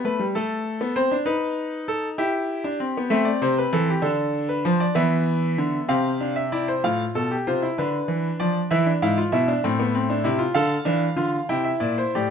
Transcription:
0.04 0.19 A3 medium
0.04 0.23 B4 medium
0.19 0.34 G3 medium
0.35 0.79 A3 medium
0.35 0.94 A4 medium
0.81 0.95 B3 medium
0.96 1.10 C4 medium
0.96 1.14 C5 medium
1.12 1.26 D4 medium
1.26 2.15 D#4 medium
1.26 1.85 B4 medium
1.88 2.07 A4 medium
2.18 2.63 E4 medium
2.18 3.08 G4 medium
2.64 2.79 D4 medium
2.80 2.95 C4 medium
2.97 3.11 B3 medium
3.10 3.29 A3 medium
3.10 4.00 C4 medium
3.10 3.25 E5 medium
3.25 3.40 D5 medium
3.42 3.61 C3 medium
3.42 3.57 C5 medium
3.58 3.72 B4 medium
3.73 3.91 E3 medium
3.73 3.87 A4 medium
3.90 4.03 G4 medium
4.02 4.62 D3 medium
4.02 4.92 D4 medium
4.02 4.47 A4 medium
4.49 4.64 B4 medium
4.65 4.84 F3 medium
4.65 4.80 C5 medium
4.80 4.95 D5 medium
4.95 5.56 E3 medium
4.95 5.86 B3 medium
4.95 5.86 E5 medium
5.58 5.77 D3 medium
5.88 6.81 C3 medium
5.88 6.08 C4 medium
5.88 6.35 F5 medium
6.21 6.40 D4 medium
6.36 6.51 E5 medium
6.52 6.72 E4 medium
6.52 6.67 D5 medium
6.68 6.83 C5 medium
6.84 7.03 A2 medium
6.84 7.29 F4 medium
6.84 7.03 F5 medium
7.15 7.35 B2 medium
7.15 7.35 A4 medium
7.31 7.46 G4 medium
7.47 7.66 C3 medium
7.47 7.62 F4 medium
7.47 7.66 C5 medium
7.62 7.77 E4 medium
7.78 7.98 D3 medium
7.78 8.69 D4 medium
7.78 8.39 B4 medium
8.08 8.28 E3 medium
8.40 8.59 F3 medium
8.40 8.59 D5 medium
8.71 8.90 E3 medium
8.71 8.86 E4 medium
8.71 8.90 E5 medium
8.86 9.01 D4 medium
9.02 9.21 G#2 medium
9.02 9.17 E4 medium
9.02 9.21 F5 medium
9.17 9.32 F4 medium
9.32 9.52 B2 medium
9.32 9.48 E4 medium
9.32 10.52 E5 medium
9.48 9.63 D4 medium
9.64 10.24 A2 medium
9.64 9.79 C4 medium
9.80 9.94 B3 medium
9.95 10.10 C4 medium
10.10 10.25 D4 medium
10.24 10.44 C3 medium
10.24 10.40 E4 medium
10.38 10.55 F4 medium
10.55 10.75 D3 medium
10.55 10.75 A4 medium
10.55 11.46 F5 medium
10.85 11.06 E3 medium
10.85 11.05 D4 medium
11.16 11.36 D3 medium
11.16 11.37 F4 medium
11.49 11.70 C3 medium
11.49 12.11 E4 medium
11.49 11.65 G5 medium
11.64 11.81 E5 medium
11.80 12.01 A#2 medium
11.80 11.96 D5 medium
11.98 12.13 C5 medium
12.15 12.30 A2 medium
12.15 12.30 G4 medium
12.15 12.30 D5 medium

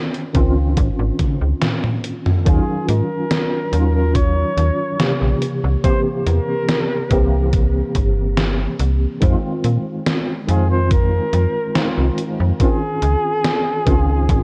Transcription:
0.14 closed hi-hat soft
0.33 0.76 C#2 medium
0.33 2.40 D#3 medium
0.33 2.41 C4 medium
0.33 2.41 C#4 medium
0.33 2.42 F4 loud
0.33 kick loud
0.33 closed hi-hat medium
0.77 0.91 G#1 loud
0.77 kick loud
0.77 closed hi-hat medium
0.99 1.11 G#1 loud
1.19 kick medium
1.19 closed hi-hat medium
1.19 high tom medium
1.41 1.54 C#2 medium
1.61 snare loud
1.61 closed hi-hat medium
1.61 mid tom medium
1.84 mid tom medium
2.04 closed hi-hat medium
2.26 mid tom medium
2.45 2.60 D#2 loud
2.45 3.67 D#3 medium
2.45 3.68 F#3 medium
2.45 3.68 C#4 medium
2.45 3.69 F4 loud
2.45 2.85 G#4 medium
2.45 kick loud
2.45 closed hi-hat medium
2.88 3.02 G#2 medium
2.88 3.91 A#4 loud
2.88 closed hi-hat medium
3.31 snare loud
3.31 closed hi-hat medium
3.71 4.45 D#2 medium
3.71 4.94 D#3 medium
3.71 4.94 F#3 medium
3.71 4.95 C#4 medium
3.71 4.96 F4 medium
3.71 closed hi-hat medium
3.95 4.17 A#4 medium
4.15 5.42 C#5 loud
4.15 kick loud
4.15 closed hi-hat medium
4.57 4.71 D#2 loud
4.57 closed hi-hat medium
4.99 5.79 C3 medium
4.99 5.79 E3 medium
4.99 5.79 A#3 medium
4.99 5.79 G4 medium
4.99 snare loud
4.99 closed hi-hat medium
5.22 5.34 A#1 medium
5.42 closed hi-hat medium
5.64 5.76 C2 loud
5.84 6.00 E3 medium
5.84 6.00 A#3 medium
5.84 6.00 C4 medium
5.84 6.01 G4 medium
5.84 6.00 C5 loud
5.84 kick loud
5.84 closed hi-hat medium
6.26 6.40 E2 medium
6.26 7.49 A#4 loud
6.26 closed hi-hat medium
6.69 snare loud
6.69 closed hi-hat medium
7.10 7.83 C2 medium
7.10 9.17 E3 medium
7.10 9.17 A#3 medium
7.10 9.18 C4 medium
7.10 9.18 G4 medium
7.10 kick loud
7.10 closed hi-hat medium
7.53 kick loud
7.53 closed hi-hat medium
7.95 8.67 G1 medium
7.95 kick medium
7.95 closed hi-hat medium
8.37 snare loud
8.37 closed hi-hat medium
8.80 9.06 C2 medium
8.80 closed hi-hat medium
9.20 9.36 F2 loud
9.20 10.43 D#3 medium
9.20 10.44 G#3 medium
9.20 10.44 C4 medium
9.20 10.45 F4 loud
9.20 kick loud
9.20 closed hi-hat medium
9.64 9.78 A#2 medium
9.64 closed hi-hat medium
10.06 snare loud
10.06 closed hi-hat medium
10.47 11.21 F2 medium
10.47 11.70 D#3 medium
10.47 11.70 G#3 medium
10.47 11.71 C4 medium
10.47 11.71 F4 medium
10.47 10.69 G#4 medium
10.47 closed hi-hat medium
10.71 10.93 C5 loud
10.91 12.18 A#4 loud
10.91 kick loud
10.91 closed hi-hat medium
11.33 11.47 F2 loud
11.33 closed hi-hat medium
11.75 12.55 D#3 medium
11.75 12.55 G#3 medium
11.75 12.55 C4 medium
11.75 12.56 F4 loud
11.75 snare loud
11.75 closed hi-hat medium
11.98 12.10 C2 medium
12.18 closed hi-hat medium
12.40 12.52 F2 loud
12.59 12.76 D#3 medium
12.59 12.76 C4 medium
12.59 12.76 C#4 medium
12.59 12.76 F4 medium
12.59 14.43 G#4 loud
12.59 kick loud
12.59 closed hi-hat medium
13.02 13.16 C#2 medium
13.02 closed hi-hat medium
13.45 snare loud
13.45 closed hi-hat medium
13.85 14.28 C#2 medium
13.85 14.43 D#3 medium
13.85 14.43 C4 medium
13.85 14.43 C#4 medium
13.85 14.43 F4 loud
13.85 kick loud
13.85 closed hi-hat medium
14.29 14.43 G#1 loud
14.29 kick loud
14.29 closed hi-hat medium

